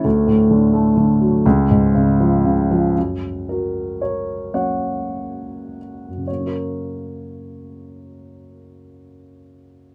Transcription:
Already playing: G4 C#5
0.04 D2
0.27 A2
0.51 D3
0.73 A3
0.97 D3
1.21 F#3
1.46 C#2
1.70 G#2
1.95 C#3
2.20 F3
2.45 C#3
2.71 F3
2.97 F#2
3.49 F#4 A#4
4.01 A#4 C#5
4.53 F#3 A#3 C#4 C#5 F#5
6.09 F#2
6.17 C#3
6.24 F#3 C#5
6.32 A#3
6.40 C#4
6.47 A#4

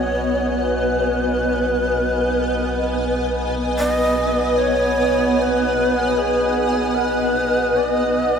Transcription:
Already playing: B1 B3 F#4 B4 C#5 D#5 F#5 G#5
0.59 B4 C#5
3.79 D#5
4.58 C#5
5.38 C#5
5.42 B4
6.18 G#4
6.95 B4
7.77 D5
7.91 D#5

